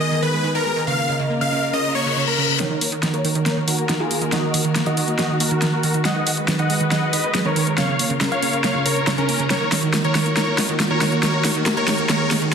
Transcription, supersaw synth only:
0.01 D#5
0.22 B4
0.55 A#4
0.87 F5
1.41 F5
1.73 D#5
1.95 C#5
2.27 A#4
2.60 A#4 C#5
3.14 A#4 C#5
3.46 A#4 C#5
3.68 F#4 A#4
4.00 F4 G#4
4.32 F#4 D#5
4.86 F#4 D#5
5.19 F#4 D#5
5.40 F#4 A#4
5.73 F#4 A#4
6.05 D#5 F#5
6.59 D#5 F#5
6.92 D#5 F#5
7.13 B4 D#5
7.46 A#4 C#5
7.78 C#5 F5
8.32 C#5 F5
8.64 C#5 F5
8.86 A#4 C#5
9.18 C#4 A#4
9.50 A#4 C#5
10.05 A#4 C#5
10.37 A#4 C#5
10.91 A#4 C#5
11.23 A#4 C#5
11.77 A#4 C#5
12.10 A#4 C#5

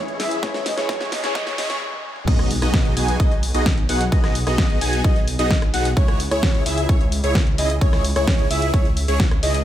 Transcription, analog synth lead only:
Already playing: C#5
0.20 E5
0.43 C#5
0.77 C#5
0.89 C#5
1.24 C#5
1.35 C#5
1.58 C#5
2.27 D#5
2.62 D#5
2.97 G#5
3.20 D#5
3.54 D#5
3.89 F#5
4.12 D#5
4.47 D#5
4.81 G#5
5.04 D#5
5.39 D#5
5.74 F#5
5.97 C#5
6.31 C#5
6.66 E5
6.89 C#5
7.24 C#5
7.58 D#5
7.81 C#5
8.16 C#5
8.51 E5
8.74 C#5
9.08 C#5
9.43 D#5

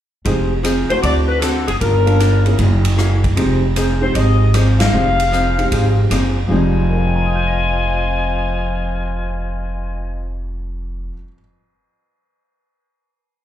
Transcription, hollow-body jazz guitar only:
0.25 F3 C4 D#4 G#4
0.63 F3 C4 D#4 G#4
1.03 D3 A3 C4 F#4
1.42 D3 A3 C4 F#4
1.80 G3 D4 F4 A#4
2.20 G3 D4 F4 A#4
2.58 F#3 A#3 E4 G#4
2.97 F#3 A#3 E4 G#4
3.36 F3 C4 D#4 G#4
3.76 F3 C4 D#4 G#4
4.16 F3 C4 D#4 G#4
4.54 F3 C4 D#4 G#4
4.93 F3 C4 D#4 G#4
5.32 F3 C4 D#4 G#4
5.71 F3 C4 D#4 G#4
6.10 F3 C4 D#4 G#4
6.47 F3
6.52 C4 D#4

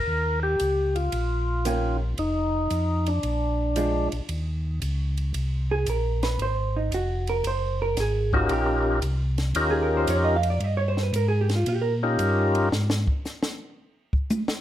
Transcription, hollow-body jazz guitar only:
1.65 D#3 A#3 C#4 G4
3.76 F3 G#3 D4
5.71 G#4
5.90 A#4
6.23 B4
6.42 C5
6.76 D#4
6.94 F#4
7.29 A#4
7.47 C5
7.82 A#4
8.00 G#4
8.34 F#4
8.53 G4
9.71 G#4
9.83 A#4
9.97 C5
10.10 C#5
10.24 D#5
10.36 F5
10.50 D5
10.64 D#5
10.77 C#5
10.88 C5
11.03 B4
11.16 A#4
11.28 G#4
11.41 G4
11.56 F4
11.68 G4
11.82 A#4

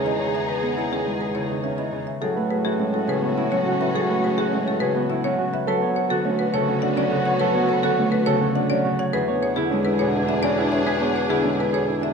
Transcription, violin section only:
Already playing: D#4 G#4
2.21 C#4 F#4
5.67 B3 F#4
9.13 D4 G#4

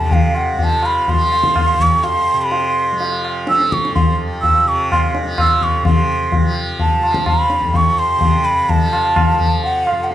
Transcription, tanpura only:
Already playing: F2 C3 F3
0.54 F3
1.13 F3
1.74 F2
2.34 C3
2.92 F3
3.49 F3
4.08 F2
4.65 C3
5.23 F3
5.82 C3
6.42 F3
7.01 F3
7.59 F2
8.17 C3
8.74 F3
9.33 F3
9.91 F2

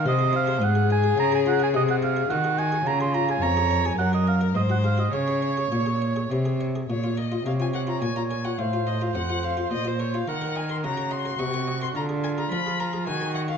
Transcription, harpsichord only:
0.06 C3
0.19 G#4
0.33 D#4
0.47 G#4
0.61 G#2 D#4
0.75 G#4
0.90 D#4
1.04 G#4
1.18 C#3
1.32 G#4
1.46 F4
1.60 G#4
1.74 C3
1.89 G#4
2.02 D#4
2.17 G#4
2.31 D#3 D#4
2.44 G#4
2.59 D#4
2.72 G#4
2.87 C#3
3.00 G#4
3.14 F4
3.29 G#4
3.43 F2
3.57 G#4
3.71 C#5
3.85 G#4
4.00 F#2
4.13 A#4
4.27 D#5
4.41 A#4
4.55 G#2
4.69 F#4
4.84 G#4
4.98 F#4
5.13 C#3
5.28 G#4
5.42 C#5
5.57 G#4
5.72 A#2 C#5
5.86 G#4
6.02 C#5
6.16 G#4
6.31 C3 C#5
6.45 G#4
6.61 C#5
6.75 G#4
6.90 A#2
7.04 F4
7.17 A#4
7.32 F4
7.46 C3 A#4
7.60 F4
7.73 A#4
7.87 F4
8.02 A#2 A#4
8.16 F4
8.31 A#4
8.45 F4
8.59 A2
8.73 F4
8.87 C5
9.01 F4
9.15 F2 C5
9.29 F4
9.43 C5
9.57 F4
9.71 A#2
9.85 F4
9.99 A#4
10.14 F4
10.28 D#3
10.41 A#4
10.56 D#5
10.69 A#4
10.84 C#3 D#5
10.97 A#4
11.11 D#5
11.25 A#4
11.39 C3 D#5
11.54 A#4
11.68 D#5
11.82 A#4
11.95 D3
12.09 G#4
12.24 A#4
12.38 G#4
12.52 F3 A#4
12.66 G#4
12.80 A#4
12.93 G#4
13.07 D#3
13.21 A#4
13.35 D#5
13.48 A#4

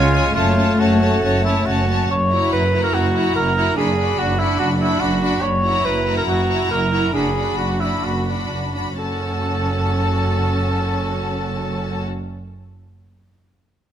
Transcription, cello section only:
Already playing: C#3
0.35 F#2
0.79 F#2
1.23 F#2
1.67 F#2
2.10 F#2
2.53 F#2
2.95 F#2
3.36 F#2
3.78 F#2
4.19 F#2
4.60 F#2
5.01 F#2
5.43 F#2
5.85 F#2
6.27 F#2
6.70 F#2
7.14 F#2
7.58 F#2
8.03 F#2
8.50 F#2
8.99 F#2

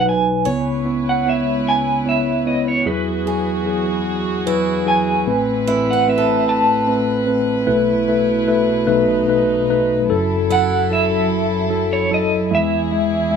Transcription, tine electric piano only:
Already playing: B1 B2 F#3 D#4 B4
0.05 F#3 D#4 B4
0.46 C#2 C#3 B3 E4 C#5
0.85 B3 E4 C#5
1.26 B3 E4 C#5
2.06 B3 E4 C#5
2.46 B3 E4 C#5
2.86 E2 F#3 E4 G#4
3.26 F#3 E4 G#4
3.66 F#3 E4 G#4
4.47 F#3 E4 B4
4.86 F#3 E4 G#4
5.27 A1 A2 A3 C4 B4
5.68 A3 C4 B4
6.07 A3 C4 B4
6.88 A3 C4 B4
7.27 A3 C4 B4
7.67 B1 B2 A3 E4 B4
8.08 A3 E4 B4
8.48 A3 E4 B4
8.87 B1 B2 A3 D#4 B4
9.28 A3 D#4 B4
9.70 A3 D#4 B4
10.10 F#1 F#2 F#3 E4 A4
10.50 F#3 E4 A4
10.91 F#3 E4 A4
11.70 F#3 E4 A4
12.11 F#3 E4 A4
12.51 E2 E3 G#3 E4 E5
12.92 G#3 E4 E5
13.31 G#3 E4 E5

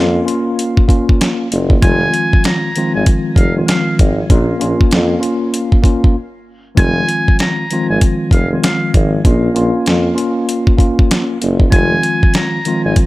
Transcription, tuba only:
Already playing: F2
1.52 F#1
1.83 F1
2.95 G#1
3.36 F1
4.00 G#1
4.30 A#1
4.61 A#1
4.92 F2
6.77 F1
7.90 G#1
8.31 F1
8.94 G#1
9.25 A#1
9.56 A#1
9.87 F2
11.42 F#1
11.72 F1
12.85 G#1

